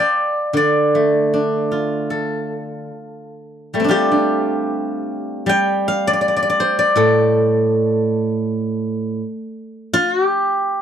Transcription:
guzheng
Already playing: C5 F5 G5 A5 C6 D6
0.00 D5
0.53 D3 D5
0.95 A3
1.34 D4
1.72 F4
2.10 A4
3.74 G3 A3
3.80 C4
3.84 D4
3.88 G3 F4 G4
4.12 D4
5.46 G3 G5
5.88 F5
6.07 D5
6.13 D5
6.21 D5
6.28 D5
6.36 D5
6.42 D5
6.50 D5
6.60 C5
6.79 D5
6.96 A2 A4
9.93 F4
10.12 F#4
10.24 G4

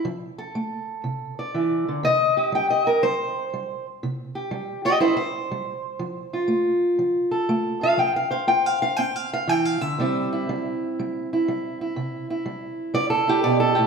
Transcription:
steel-string acoustic guitar
0.05 F3
0.38 A4
0.55 A3
1.04 C3
1.39 D5
1.54 E3
1.89 D3
2.03 C3 D#5
2.37 G4
2.52 G3 G5
2.70 D#5
2.87 A#4
3.03 G3 C5
3.54 G3
4.03 C3
4.35 G4
4.51 G3
4.85 G4 D#5
5.00 G3 E4 C5
5.17 C5
5.51 G3
5.99 F3
6.33 F4
6.48 A3
6.99 F3
7.31 A4
7.49 A3
7.81 F4 F5
7.97 F3 G5
8.16 F5
8.31 C5 F5
8.47 F4 G5
8.66 F5
8.82 F5
8.96 C4 G5
9.16 F5
9.34 F5
9.47 E3 G5
9.65 F5
9.81 D3 E5
9.99 C3 G3 C4 E4
10.33 E4
10.49 G3
10.99 G3
11.33 E4
11.48 G3
11.81 E4
11.96 C3
12.30 E4
12.46 G3
12.94 G3 D5
13.10 A4
13.28 E4 G4
13.44 B2 D5
13.60 A4
13.75 A2 G4

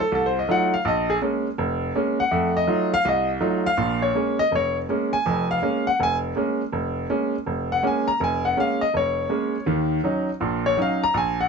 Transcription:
grand piano
0.00 A4
0.12 C2 A4
0.26 C5
0.39 D#5
0.48 F#3 A3 D#4 F4 F#5
0.74 F5
0.85 A#1 D#5
1.10 G#4
1.22 G#3 A#3 C#4
1.58 F1
1.95 G#3 A#3 C#4
2.20 F#5
2.31 F2 A3
2.57 D#5
2.67 F#3 A3 D#4 F4
2.94 F5
3.05 C2 D#5
3.40 F#3 A3 D#4 F4
3.66 F5
3.77 A#1 A#2
4.02 C#5
4.15 G#3 A#3 C#4
4.39 D#5
4.52 F1 C#5
4.89 G#3 A#3 C#4
5.13 G#5
5.26 F1 F2
5.51 F5
5.62 G#3 A#3 C#4
5.87 F#5
6.00 F1 G#5
6.36 G#3 A#3 C#4
6.72 F1
7.10 G#3 A#3 C#4
7.46 F1
7.72 F#5
7.83 G#3 A#3 C#4
7.87 G#5
8.08 A#5
8.20 F1 G#5
8.45 F#5
8.57 G#3 A#3 C#4 F5
8.81 D#5
8.94 F1 C#5
9.29 G#3 A#3 C#4
9.66 D#2 D#3
10.04 F#3 C#4 D#4
10.40 A#1 A#2
10.66 C#5
10.77 F#3 C#4 D#4
10.82 F5
11.04 A#5
11.14 A#1 G#5
11.41 F#5

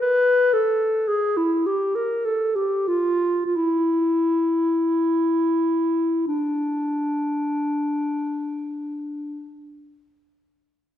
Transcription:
clarinet
0.01 B4
0.53 A4
1.08 G#4
1.37 E4
1.66 G4
1.96 A#4
2.25 A4
2.56 G4
2.88 F4
3.46 F4
3.56 E4
6.28 D4

